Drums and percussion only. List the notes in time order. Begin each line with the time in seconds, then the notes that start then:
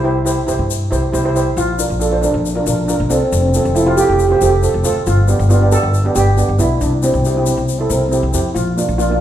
0.26 shaker
0.48 shaker
0.71 shaker
0.93 shaker
1.14 shaker
1.36 shaker
1.57 shaker
1.79 shaker
2.01 shaker
2.23 shaker
2.46 shaker
2.67 shaker
2.89 shaker
3.10 shaker
3.33 shaker
3.54 shaker
3.65 shaker
3.76 shaker
3.98 shaker
4.19 shaker
4.41 shaker
4.63 shaker
4.84 shaker
5.06 shaker
5.28 shaker
5.40 shaker
5.50 shaker
5.72 shaker
5.94 shaker
6.16 shaker
6.38 shaker
6.59 shaker
6.81 shaker
7.03 shaker
7.14 shaker
7.25 shaker
7.46 shaker
7.57 shaker
7.68 shaker
7.90 shaker
8.12 shaker
8.34 shaker
8.56 shaker
8.78 shaker
8.89 shaker
8.99 shaker